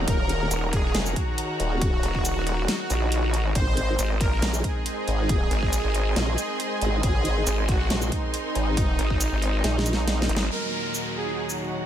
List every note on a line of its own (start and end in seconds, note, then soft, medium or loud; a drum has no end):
0.00 3.51 D#3 medium
0.00 10.47 D#4 medium
0.00 3.51 F#4 medium
0.00 4.18 G#4 medium
0.00 3.51 A#4 medium
0.00 3.56 C#5 medium
0.00 5.05 F#5 medium
0.00 4.49 A#5 medium
0.08 0.49 D#1 loud
0.08 0.65 A#4 loud
0.08 kick loud
0.08 closed hi-hat medium
0.29 closed hi-hat medium
0.51 0.93 D#1 loud
0.51 closed hi-hat medium
0.51 shaker medium
0.73 1.02 G#4 loud
0.73 kick loud
0.73 closed hi-hat medium
0.95 1.15 F1 medium
0.95 snare loud
0.95 closed hi-hat medium
1.06 shaker medium
1.16 3.47 F#4 loud
1.16 kick medium
1.16 closed hi-hat medium
1.38 closed hi-hat medium
1.60 2.02 D#1 loud
1.60 closed hi-hat medium
1.81 kick loud
1.81 closed hi-hat medium
2.03 2.35 D#1 loud
2.03 closed hi-hat medium
2.15 kick medium
2.25 closed hi-hat medium
2.25 shaker medium
2.36 2.67 D#1 medium
2.47 closed hi-hat medium
2.68 snare loud
2.68 closed hi-hat medium
2.90 3.35 A#1 loud
2.90 closed hi-hat medium
2.90 shaker medium
3.12 closed hi-hat medium
3.34 3.54 A1 loud
3.34 closed hi-hat medium
3.55 3.97 G#1 loud
3.55 10.47 G#3 medium
3.55 10.47 C4 medium
3.55 11.64 A#4 medium
3.55 4.12 C5 loud
3.55 kick loud
3.55 closed hi-hat medium
3.77 11.46 G#5 medium
3.77 closed hi-hat medium
3.99 4.41 G#1 loud
3.99 11.59 D#5 medium
3.99 closed hi-hat medium
3.99 shaker medium
4.21 4.49 A#4 medium
4.21 kick loud
4.21 closed hi-hat medium
4.34 11.86 C6 medium
4.42 4.62 A#1 loud
4.42 snare loud
4.42 closed hi-hat medium
4.54 shaker medium
4.64 6.95 G#4 loud
4.64 kick medium
4.64 closed hi-hat medium
4.86 closed hi-hat medium
5.08 5.49 G#1 loud
5.08 closed hi-hat medium
5.29 kick loud
5.29 closed hi-hat medium
5.51 5.82 G#1 medium
5.51 closed hi-hat medium
5.63 kick medium
5.73 closed hi-hat medium
5.73 shaker medium
5.84 6.15 G#1 medium
5.94 closed hi-hat soft
6.16 6.36 A#1 loud
6.16 snare loud
6.16 closed hi-hat medium
6.38 closed hi-hat medium
6.38 shaker medium
6.60 closed hi-hat medium
6.81 7.02 G#1 loud
6.81 closed hi-hat medium
7.03 7.45 G#1 loud
7.03 7.60 G#4 loud
7.03 kick loud
7.03 closed hi-hat medium
7.25 closed hi-hat medium
7.47 7.89 G#1 loud
7.47 closed hi-hat medium
7.47 shaker medium
7.68 7.97 F#4 medium
7.68 kick loud
7.68 closed hi-hat medium
7.90 8.10 A#1 medium
7.90 snare loud
7.90 closed hi-hat medium
8.02 shaker medium
8.12 10.43 D#4 loud
8.12 kick medium
8.12 closed hi-hat medium
8.34 closed hi-hat medium
8.55 8.97 G#1 loud
8.55 closed hi-hat medium
8.77 kick loud
8.77 closed hi-hat medium
8.99 9.30 G#1 loud
8.99 closed hi-hat medium
9.10 kick medium
9.21 closed hi-hat medium
9.21 shaker medium
9.32 9.62 G#1 medium
9.42 closed hi-hat medium
9.64 10.28 A#1 medium
9.64 snare medium
9.64 closed hi-hat medium
9.79 snare medium
9.86 closed hi-hat medium
9.86 shaker medium
9.93 snare medium
10.08 snare medium
10.08 closed hi-hat medium
10.22 snare loud
10.29 10.49 G#1 loud
10.29 closed hi-hat medium
10.36 snare loud
10.51 11.86 D#2 medium
10.51 11.86 A#2 medium
10.51 11.86 F#3 medium
10.51 11.86 D#4 medium
10.51 11.08 A#4 loud
10.51 downlifter medium
10.75 11.86 F#5 medium
10.87 11.86 G#4 medium
10.94 shaker medium
10.99 11.86 A#5 medium
11.12 11.45 G#4 medium
11.12 11.86 C#5 medium
11.49 shaker medium
11.60 11.86 F#4 loud